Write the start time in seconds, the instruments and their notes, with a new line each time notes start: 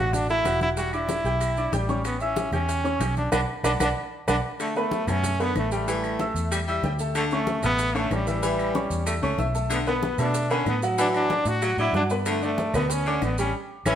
Already playing: fingered electric bass A1, upright piano F#4 F#5
0.00 trombone F#4, upright piano F#6
0.13 trombone D4, high bongo, high conga, low conga, maracas
0.29 upright piano A3 A4 A5, trombone E4, high conga, maracas
0.44 fingered electric bass E1, upright piano F#4 F#5 F#6, high bongo, low bongo, high conga, claves, maracas
0.61 trombone E4, high conga, maracas
0.77 upright piano G3 G4 G5, trombone F#4, high bongo, high conga, maracas
0.93 upright piano D4 D5 D6, trombone E4, high conga, claves, maracas
1.09 high bongo, high conga, maracas
1.24 fingered electric bass B1, upright piano G4 G5 G6, high bongo, maracas
1.41 high bongo, high conga, claves, maracas
1.57 upright piano D4 D5 D6, high bongo, high conga, maracas
1.72 fingered electric bass A1, trombone G3, upright piano G4 G5 G6, high bongo, low bongo, high conga, maracas
1.89 upright piano C#4 C#5 C#6, high bongo, high conga, maracas
2.05 trombone B3, high bongo, high conga, claves, maracas
2.20 trombone C#4, upright piano E4 E5 E6, high conga, maracas
2.36 high bongo, high conga, maracas
2.52 fingered electric bass E2, trombone C#4, upright piano G4 G5 G6, high conga, low conga, claves, maracas
2.69 high bongo, high conga, maracas
2.84 upright piano C#4 C#5 C#6, high conga, maracas
3.00 fingered electric bass B1, upright piano G4 G5 G6, high bongo, low bongo, high conga, claves, maracas
3.17 trombone D4, high conga, maracas
3.32 fingered electric bass B1, trombone D4, upright piano B4 D5 F#5, low bongo, high conga, claves, maracas
3.63 fingered electric bass B1, trombone D4, upright piano B4 D5 F#5, low bongo, high conga, claves, maracas
3.79 fingered electric bass B1, trombone D4, upright piano B4 D5 F#5, low bongo, high conga, claves, maracas
4.27 fingered electric bass B1, trombone D4, upright piano B4 D5 F#5, low bongo, high conga, claves, maracas
4.60 baritone saxophone D3, trombone A3, high bongo, high conga, claves, maracas
4.76 trombone A3, upright piano B3 B4 B5, high conga, maracas
4.91 high bongo, high conga, maracas
5.07 fingered electric bass F#2, baritone saxophone B2, upright piano A3 A4 A5, trombone C#4, high bongo, high conga, low conga, claves, maracas
5.23 high bongo, high conga, low conga, maracas
5.40 baritone saxophone D3, upright piano B3 B4 B5, trombone B3, high bongo, high conga, maracas
5.55 fingered electric bass A1, trombone A3, high bongo, low bongo, high conga, claves, maracas
5.71 upright piano G3 G4 G5, trombone A3, high bongo, maracas
5.87 baritone saxophone E3, upright piano G3 G4 G5, high bongo, high conga, maracas
6.04 high conga, claves, maracas
6.19 upright piano E4 E5 E6, high bongo, high conga, maracas
6.34 fingered electric bass E2, high bongo, maracas
6.51 baritone saxophone G3, upright piano G4 G5 G6, high bongo, high conga, claves, maracas
6.68 baritone saxophone G3, upright piano E4 E5 E6, high bongo, high conga, maracas
6.83 fingered electric bass D2, upright piano G4 G5 G6, high bongo, low bongo, high conga, maracas
6.99 upright piano A3 A4 A5, high bongo, high conga, maracas
7.15 baritone saxophone D3, trombone A3, high bongo, high conga, claves, maracas
7.31 trombone A3, upright piano C#4 C#5 C#6, high conga, maracas
7.47 high bongo, high conga, maracas
7.63 fingered electric bass A1, baritone saxophone C#3, upright piano A3 A4 A5, trombone B3, high bongo, high conga, low conga, claves, maracas
7.79 high bongo, high conga, maracas
7.95 baritone saxophone D3, trombone A3, upright piano C#4 C#5 C#6, high bongo, high conga, maracas
8.11 fingered electric bass A1, trombone G3, high bongo, low bongo, high conga, claves, maracas
8.27 upright piano E3 E4 E5, trombone G3, high bongo, maracas
8.43 baritone saxophone E3, upright piano E3 E4 E5, high bongo, high conga, maracas
8.58 high conga, claves, maracas
8.75 upright piano C#4 C#5 C#6, high bongo, high conga, maracas
8.90 fingered electric bass E2, maracas
9.06 baritone saxophone A3, upright piano E4 E5 E6, high bongo, high conga, claves, maracas
9.22 fingered electric bass C#2, baritone saxophone A3, upright piano C#4 C#5 C#6, high conga, maracas
9.38 fingered electric bass B1, upright piano E4 E5 E6, high bongo, low bongo, high conga, maracas
9.54 upright piano A3 A4 A5, high bongo, high conga, maracas
9.70 baritone saxophone D3, trombone B3, high bongo, high conga, claves, maracas
9.87 upright piano B3 B4 B5, trombone B3, high conga, maracas
10.02 high bongo, high conga, maracas
10.18 fingered electric bass B2, baritone saxophone B2, upright piano A3 A4 A5, trombone D4, high bongo, high conga, low conga, claves, maracas
10.34 high bongo, high conga, maracas
10.50 baritone saxophone D3, upright piano B3 B4 B5, trombone C#4, high bongo, high conga, maracas
10.66 fingered electric bass A2, trombone B3, high bongo, low bongo, high conga, claves, maracas
10.82 upright piano F#3 F#4 F#5, high bongo, maracas
10.98 baritone saxophone E3, upright piano F#3 F#4 F#5, trombone D4, high bongo, high conga, maracas
11.14 trombone D4, high conga, claves, maracas
11.30 upright piano D4 D5 D6, high bongo, high conga, maracas
11.45 fingered electric bass A2, trombone F#4, high bongo, maracas
11.62 baritone saxophone F#3, upright piano F#4 F#5 F#6, high bongo, high conga, claves, maracas
11.77 fingered electric bass A2, baritone saxophone F#3, upright piano D4 D5 D6, trombone E4, high bongo, high conga, maracas
11.93 fingered electric bass G2, trombone D4, upright piano F#4 F#5 F#6, high bongo, low bongo, high conga, maracas
12.10 upright piano B3 B4 B5, high bongo, high conga, maracas
12.26 baritone saxophone D3, trombone A3, high bongo, high conga, claves, maracas
12.42 trombone A3, upright piano D4 D5 D6, high conga, maracas
12.58 high bongo, high conga, maracas
12.74 fingered electric bass D2, baritone saxophone B2, upright piano B3 B4 B5, trombone B3, high bongo, high conga, low conga, claves, maracas
12.90 trombone C#4, high bongo, high conga, maracas
13.06 baritone saxophone D3, upright piano D4 D5 D6, high bongo, high conga, maracas
13.21 fingered electric bass A1, trombone B3, high bongo, low bongo, high conga, claves, maracas
13.38 upright piano G3 G4 G5, trombone C#4, high bongo, maracas
13.85 fingered electric bass A1, baritone saxophone E3, trombone C#4, upright piano A4 C#5 E5, low bongo, high conga, claves, maracas